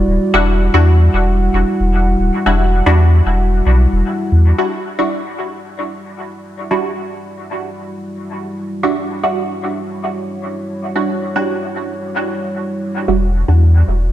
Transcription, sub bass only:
0.07 D1
0.34 E1
0.74 E2
1.13 E1
1.53 E1
1.80 E1
2.19 D1
2.46 E1
2.86 E2
3.26 E1
3.66 B1
3.92 E1
4.32 E2
13.08 E1
13.48 E2
13.88 E1

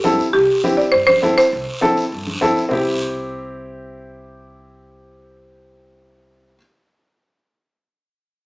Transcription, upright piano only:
0.04 C4 E4 A4
0.64 C4 E4 G4
1.22 C4 E4 A4
1.81 C4 E4 A4
2.41 C4 E4 A4
2.69 C4 E4
2.73 G4

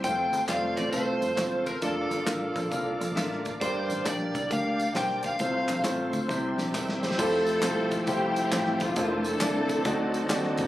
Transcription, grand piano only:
0.05 A3 C4 F4 C5
0.50 A3 C4 F4 D5
0.93 A3 C4 F4 A4
1.36 A3 C4 F4 C5
1.82 A#3 D4 F4 D5
2.26 A#3 D4 F4 A#4
2.71 A#3 D4 F4 A#4
3.16 A#3 D4 F4 E5
3.60 G2 A#3 D4 G4 D5
4.05 A#3 D4 G4 D5
4.50 A#3 D4 G4 A#4
4.95 A#3 D4 G4 C5
5.40 C3 A3 C4 F4 C5
5.84 A3 C4 F4 C5
6.28 C3 G3 C4 E4 C5
6.74 A#4 E5
7.03 G4 C5
7.19 A3 E4 F4 G4 C5
7.63 A3 E4 F4 G4 C5
8.08 A3 E4 F4 G4 C5
8.53 A3 E4 F4 G4 C5
8.97 A#3 D4 E4 A4 C5
9.41 A#3 D4 E4 A4 D5
9.85 D3 C4 D#4 F#4 A4 D5
10.30 C4 D#4 F#4 A4 D5

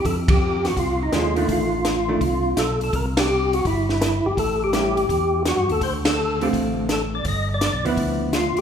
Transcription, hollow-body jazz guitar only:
1.12 D3 G#3 C#4
1.36 D#3 A3 D4
2.09 D#3 A3 D4
4.73 G3 C#4 E4
6.42 D3 A3 C4 F4
7.85 F3 B3 E4

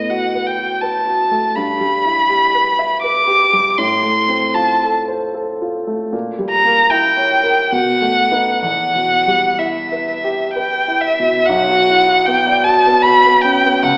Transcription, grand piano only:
Already playing: A2 A3 B3
0.10 F#4
0.35 B4
0.58 F#4
0.82 B4
1.06 F#4
1.31 A3
1.56 G2
1.80 G3
2.05 E4
2.29 G4
2.55 B4
2.79 E5
3.04 B4
3.27 G4
3.53 G3
3.78 A2
4.03 A3
4.29 C4
4.55 F4
4.83 A4
5.08 C5
5.34 A4
5.62 F4
5.87 A3
6.13 A#2
6.39 G3
6.65 A#3
6.91 E4
7.17 C#5
7.43 A#4
7.72 B2
8.01 A3
8.32 D#4 B4
8.63 E2
8.95 B2
9.27 G3
9.59 E4
9.92 B4
10.24 G4
10.56 B4
10.88 E4
11.19 B2
11.49 B1
11.69 F#4
11.89 E4
12.08 F#4
12.27 B3
12.47 D5
12.66 F#4
12.86 B3
13.06 F#4
13.25 B3
13.44 C#4
13.65 B3
13.83 C#2

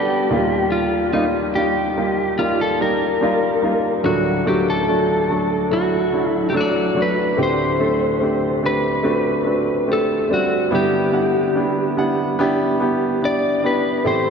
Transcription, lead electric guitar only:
Already playing: G4
0.72 F4
1.13 D#4
1.55 G4
2.39 F4
2.61 A4
2.82 A#4
4.06 F#4
4.48 G4
4.70 A4
5.73 F#4
6.29 E4
6.50 G4
6.57 F#4 D5
7.02 B4
7.43 C5
8.66 B4
9.93 A4
10.34 F#4
10.75 G4
13.25 D5
13.66 B4
14.07 C5

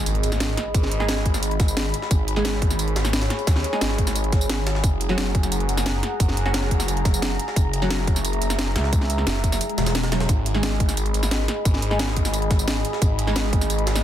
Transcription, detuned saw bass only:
Already playing: G#1
0.23 G#1
0.75 G#1
1.60 G#1
2.11 G#1
2.96 G#1
3.47 D#2
3.81 G#1
4.84 F#1
5.69 F#1
6.20 F#1
7.05 F#1
7.56 F#1
8.42 F#1
9.27 F#1
10.29 G#1
11.14 G#1
11.65 G#1
12.51 G#1
13.02 G#1
13.87 G#1

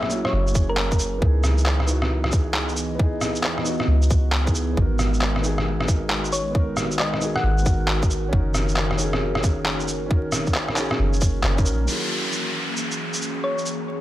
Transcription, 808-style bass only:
Already playing: A#1
0.33 F#1
1.22 C#2
3.36 E2
3.88 C#2
4.77 G#1
6.91 B1
7.44 G#1
8.33 F#1
10.47 A#1
10.99 F#1
11.44 F#1
11.66 A#1

